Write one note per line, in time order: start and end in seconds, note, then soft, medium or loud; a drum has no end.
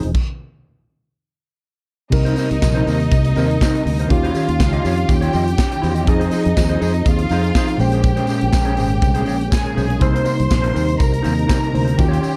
0.00 0.11 F3 medium
0.00 0.17 F3 medium
0.00 0.10 C4 medium
0.00 0.11 C4 medium
0.00 0.11 D#4 medium
0.00 0.11 G#4 medium
0.00 0.12 G#4 medium
0.00 closed hi-hat soft
0.04 0.13 E1 medium
0.04 muted clean electric guitar stroke soft
0.15 kick loud
0.15 crash medium
2.10 2.33 C2 loud
2.10 3.33 C3 medium
2.10 4.08 C3 medium
2.10 4.08 G3 medium
2.10 4.08 A#3 medium
2.10 3.33 C4 medium
2.10 4.08 D#4 medium
2.10 3.34 D#4 medium
2.10 4.06 D#4 medium
2.10 3.34 A#4 medium
2.10 4.06 D#5 medium
2.10 muted clean electric guitar stroke soft
2.10 kick loud
2.10 crash loud
2.10 tambourine soft
2.25 2.36 D#4 medium
2.25 2.37 A#4 medium
2.25 2.38 C5 medium
2.25 closed hi-hat medium
2.36 2.53 D#4 medium
2.36 2.51 A#4 medium
2.36 2.50 C5 medium
2.36 open hi-hat medium
2.36 tambourine medium
2.51 2.60 C2 loud
2.51 muted clean electric guitar stroke medium
2.51 closed hi-hat medium
2.62 2.82 A#1 loud
2.62 muted clean electric guitar stroke soft
2.62 kick loud
2.62 snare loud
2.62 clap medium
2.62 tambourine loud
2.75 2.86 D#4 medium
2.75 2.87 A#4 medium
2.75 2.88 C5 medium
2.75 closed hi-hat soft
2.87 3.07 D#2 loud
2.87 3.03 D#4 medium
2.87 3.01 A#4 medium
2.87 2.99 C5 medium
2.87 open hi-hat medium
2.87 tambourine medium
3.00 muted clean electric guitar stroke soft
3.00 closed hi-hat soft
3.12 3.31 C2 loud
3.12 kick loud
3.12 closed hi-hat medium
3.12 tambourine medium
3.25 muted clean electric guitar stroke medium
3.25 closed hi-hat medium
3.36 3.56 D#2 medium
3.36 4.10 C3 medium
3.36 4.11 C4 medium
3.36 3.56 D#4 loud
3.36 4.11 D#4 medium
3.36 3.51 A#4 loud
3.36 4.11 A#4 medium
3.36 3.50 C5 loud
3.36 open hi-hat medium
3.36 tambourine medium
3.51 muted clean electric guitar stroke medium
3.51 closed hi-hat soft
3.61 3.81 D#4 medium
3.61 3.75 A#4 medium
3.61 3.73 C5 medium
3.61 kick loud
3.61 snare loud
3.61 clap loud
3.61 tambourine loud
3.74 muted clean electric guitar stroke soft
3.74 closed hi-hat medium
3.86 4.05 D2 medium
3.86 muted clean electric guitar stroke soft
3.86 open hi-hat medium
3.99 4.11 D#4 medium
3.99 4.12 A#4 soft
3.99 4.12 C5 medium
3.99 closed hi-hat soft
4.08 4.30 D#2 loud
4.08 6.02 D#3 medium
4.08 6.06 D#3 medium
4.08 6.03 C#4 medium
4.08 6.06 C#4 medium
4.08 6.04 F4 medium
4.08 5.07 F4 medium
4.08 6.06 F4 medium
4.08 6.06 G4 medium
4.08 6.04 G4 medium
4.08 5.07 F5 medium
4.08 muted clean electric guitar stroke soft
4.08 kick loud
4.08 closed hi-hat medium
4.23 4.34 F4 medium
4.23 4.35 G4 medium
4.23 4.36 C#5 medium
4.23 closed hi-hat medium
4.35 4.51 F4 medium
4.35 4.50 G4 medium
4.35 4.48 C#5 medium
4.35 open hi-hat medium
4.35 tambourine medium
4.49 4.58 D#2 loud
4.49 muted clean electric guitar stroke medium
4.49 closed hi-hat medium
4.60 4.80 C#2 loud
4.60 muted clean electric guitar stroke soft
4.60 kick loud
4.60 snare loud
4.60 clap medium
4.60 tambourine medium
4.73 4.83 F4 medium
4.73 4.85 G4 medium
4.73 4.86 D#5 medium
4.73 closed hi-hat soft
4.85 5.04 F2 loud
4.85 5.00 F4 medium
4.85 4.98 G4 medium
4.85 4.96 C#5 medium
4.85 open hi-hat medium
4.85 tambourine medium
4.98 muted clean electric guitar stroke soft
4.98 closed hi-hat soft
5.09 5.29 D#2 loud
5.09 6.06 G4 medium
5.09 6.06 G5 loud
5.09 muted clean electric guitar stroke soft
5.09 kick loud
5.09 closed hi-hat medium
5.09 tambourine medium
5.21 5.32 F4 medium
5.21 5.34 G4 medium
5.21 5.36 C#5 medium
5.21 closed hi-hat medium
5.33 5.54 F2 loud
5.33 5.49 F4 medium
5.33 5.47 G4 medium
5.33 5.46 D#5 medium
5.33 open hi-hat medium
5.33 tambourine medium
5.47 muted clean electric guitar stroke medium
5.47 closed hi-hat medium
5.58 muted clean electric guitar stroke medium
5.58 kick loud
5.58 snare loud
5.58 clap loud
5.58 tambourine loud
5.72 muted clean electric guitar stroke medium
5.72 closed hi-hat soft
5.82 6.08 E2 medium
5.82 5.96 F4 medium
5.82 5.95 G4 medium
5.82 5.94 C#5 medium
5.82 open hi-hat medium
5.82 tambourine soft
5.95 6.07 F4 soft
5.95 6.07 G4 medium
5.95 6.08 D#5 medium
5.95 closed hi-hat soft
6.05 6.27 F2 loud
6.05 7.75 F3 medium
6.05 7.78 F3 medium
6.05 7.76 C4 medium
6.05 7.79 C4 medium
6.05 7.77 D#4 medium
6.05 7.79 D#4 medium
6.05 7.05 D#4 medium
6.05 7.78 G#4 medium
6.05 7.77 G#4 medium
6.05 7.04 D#5 medium
6.05 muted clean electric guitar stroke soft
6.05 kick loud
6.05 closed hi-hat medium
6.20 6.30 D#4 medium
6.20 6.31 G#4 medium
6.20 6.33 C5 medium
6.20 closed hi-hat medium
6.31 6.47 D#4 medium
6.31 6.44 G#4 medium
6.31 6.43 C5 medium
6.31 open hi-hat medium
6.31 tambourine medium
6.44 6.55 F2 loud
6.44 muted clean electric guitar stroke medium
6.44 closed hi-hat soft
6.56 6.77 D#2 loud
6.56 muted clean electric guitar stroke soft
6.56 kick loud
6.56 snare loud
6.56 clap medium
6.56 tambourine loud
6.69 6.80 D#4 medium
6.69 6.81 G#4 medium
6.69 6.82 C5 medium
6.69 closed hi-hat soft
6.81 7.01 F2 loud
6.81 6.97 D#4 medium
6.81 6.95 G#4 medium
6.81 6.93 C5 medium
6.81 open hi-hat medium
6.81 tambourine medium
6.94 muted clean electric guitar stroke medium
6.94 closed hi-hat soft
7.06 7.26 D#2 loud
7.06 7.79 F4 medium
7.06 7.79 F5 medium
7.06 kick loud
7.06 closed hi-hat medium
7.06 tambourine medium
7.19 muted clean electric guitar stroke soft
7.19 closed hi-hat medium
7.29 7.50 F2 medium
7.29 7.50 D#4 medium
7.29 7.45 G#4 medium
7.29 7.43 C5 loud
7.29 open hi-hat medium
7.29 tambourine medium
7.44 muted clean electric guitar stroke soft
7.44 closed hi-hat soft
7.55 7.75 D#4 medium
7.55 7.69 G#4 medium
7.55 7.68 C5 medium
7.55 kick loud
7.55 snare loud
7.55 clap loud
7.55 tambourine loud
7.68 muted clean electric guitar stroke soft
7.68 closed hi-hat soft
7.77 8.19 A#1 medium
7.77 9.72 A#2 medium
7.77 9.72 G#3 medium
7.77 10.00 G#3 medium
7.77 10.00 A#3 medium
7.77 9.73 C#4 medium
7.77 10.00 C#4 medium
7.77 9.49 G4 medium
7.77 9.73 C5 medium
7.77 9.49 G5 medium
7.77 muted clean electric guitar stroke soft
7.77 open hi-hat medium
7.77 tambourine soft
7.92 8.02 C#4 medium
7.92 8.03 G#4 medium
7.92 8.03 C5 medium
7.92 closed hi-hat medium
8.04 muted clean electric guitar stroke soft
8.04 kick loud
8.04 closed hi-hat medium
8.04 tambourine soft
8.16 8.27 C#4 medium
8.16 8.28 G#4 medium
8.16 8.29 C5 medium
8.16 closed hi-hat medium
8.27 8.44 C#4 medium
8.27 8.42 G#4 medium
8.27 8.40 C5 medium
8.27 open hi-hat medium
8.27 tambourine medium
8.41 8.52 A#1 loud
8.41 muted clean electric guitar stroke soft
8.41 closed hi-hat medium
8.53 8.78 A#1 loud
8.53 muted clean electric guitar stroke soft
8.53 kick loud
8.53 snare loud
8.53 clap loud
8.53 tambourine loud
8.65 8.75 C#4 medium
8.65 8.76 G#4 medium
8.65 8.78 C#5 medium
8.65 closed hi-hat medium
8.77 8.98 G#1 loud
8.77 8.93 C#4 medium
8.77 8.91 G#4 medium
8.77 8.89 C5 medium
8.77 open hi-hat medium
8.77 tambourine medium
8.90 muted clean electric guitar stroke medium
8.90 closed hi-hat soft
9.02 9.22 C2 loud
9.02 muted clean electric guitar stroke medium
9.02 kick loud
9.02 closed hi-hat medium
9.02 tambourine medium
9.14 9.24 C#4 medium
9.14 9.25 G#4 medium
9.14 9.27 C5 medium
9.14 closed hi-hat medium
9.25 9.47 A#1 medium
9.25 9.42 C#4 medium
9.25 9.39 G#4 medium
9.25 9.38 C#5 medium
9.25 open hi-hat medium
9.25 tambourine medium
9.39 muted clean electric guitar stroke soft
9.39 closed hi-hat soft
9.51 10.01 G#4 medium
9.51 10.00 G#5 medium
9.51 muted clean electric guitar stroke soft
9.51 kick loud
9.51 snare loud
9.51 clap loud
9.51 tambourine loud
9.64 muted clean electric guitar stroke medium
9.64 closed hi-hat soft
9.75 10.01 B1 loud
9.75 9.89 C#4 medium
9.75 9.88 G#4 medium
9.75 9.88 C5 medium
9.75 open hi-hat medium
9.75 tambourine soft
9.88 9.99 C#4 medium
9.88 10.00 G#4 medium
9.88 10.01 C#5 medium
9.88 closed hi-hat medium
9.99 10.21 C2 medium
9.99 11.69 C3 medium
9.99 11.97 C3 medium
9.99 11.97 G3 medium
9.99 11.70 A#3 medium
9.99 11.97 A#3 medium
9.99 11.70 D#4 medium
9.99 11.97 D#4 medium
9.99 10.98 C5 medium
9.99 11.71 C5 loud
9.99 10.98 C6 medium
9.99 muted clean electric guitar stroke soft
9.99 kick loud
9.99 closed hi-hat medium
9.99 tambourine soft
10.13 10.23 D#4 medium
10.13 10.24 A#4 medium
10.13 10.25 C5 medium
10.13 closed hi-hat medium
10.24 10.41 D#4 medium
10.24 10.37 A#4 medium
10.24 10.36 C5 medium
10.24 open hi-hat medium
10.24 tambourine medium
10.37 10.49 C2 loud
10.37 muted clean electric guitar stroke soft
10.37 closed hi-hat medium
10.49 10.71 A#1 loud
10.49 muted clean electric guitar stroke soft
10.49 kick loud
10.49 snare loud
10.49 clap medium
10.49 tambourine medium
10.62 10.72 D#4 medium
10.62 10.74 A#4 medium
10.62 10.74 C5 medium
10.62 closed hi-hat soft
10.74 10.95 D#2 loud
10.74 10.90 D#4 medium
10.74 10.88 A#4 medium
10.74 10.86 C5 medium
10.74 open hi-hat medium
10.74 tambourine medium
10.88 muted clean electric guitar stroke medium
10.88 closed hi-hat soft
10.99 11.20 C2 medium
10.99 11.96 A#4 medium
10.99 11.96 A#5 medium
10.99 kick loud
10.99 closed hi-hat medium
10.99 tambourine medium
11.12 muted clean electric guitar stroke medium
11.12 closed hi-hat medium
11.22 11.45 D#2 medium
11.22 11.43 D#4 medium
11.22 11.36 A#4 medium
11.22 11.34 C5 loud
11.22 open hi-hat medium
11.22 tambourine medium
11.35 muted clean electric guitar stroke medium
11.35 closed hi-hat medium
11.47 11.67 D#4 medium
11.47 11.61 A#4 medium
11.47 11.59 C5 medium
11.47 kick loud
11.47 snare loud
11.47 tambourine loud
11.51 clap loud
11.60 muted clean electric guitar stroke soft
11.60 closed hi-hat soft
11.73 11.94 D2 medium
11.73 11.98 C3 medium
11.73 11.98 A#3 soft
11.73 11.98 D#4 medium
11.73 11.99 C5 medium
11.73 muted clean electric guitar stroke soft
11.73 open hi-hat medium
11.85 11.97 D#4 soft
11.85 11.97 A#4 soft
11.85 11.98 C5 medium
11.85 closed hi-hat soft
11.97 12.18 D#2 loud
11.97 12.37 D#3 medium
11.97 12.37 C#4 medium
11.97 12.37 F4 medium
11.97 12.06 F#4 medium
11.97 12.37 G4 medium
11.97 12.37 G5 medium
11.97 muted clean electric guitar stroke soft
11.97 kick loud
11.97 closed hi-hat medium
11.97 tambourine soft
12.06 12.37 G4 medium
12.06 12.21 G4 medium
12.06 12.21 C#5 medium
12.11 12.19 F4 medium
12.11 closed hi-hat medium
12.21 12.37 F4 medium
12.21 12.36 G4 medium
12.21 12.34 C#5 medium
12.21 open hi-hat medium
12.21 tambourine medium